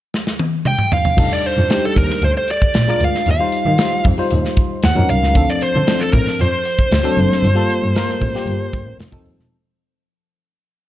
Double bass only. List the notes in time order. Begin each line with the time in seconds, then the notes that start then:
1.18 F1
1.57 F2
1.97 D#2
2.22 D2
2.75 A#1
3.01 D2
3.27 D#2
3.66 D#3
4.05 F2
4.32 D#2
4.84 D#2
4.97 F2
5.10 C2
5.22 C#2
5.35 D2
5.75 D3
6.13 A2
6.40 F2
6.92 D2
7.18 F#1
7.43 G1
7.82 G2
8.21 A1
8.46 G1
8.74 G1
8.85 A1
8.99 F1
9.13 F1
9.24 D#2
9.37 E1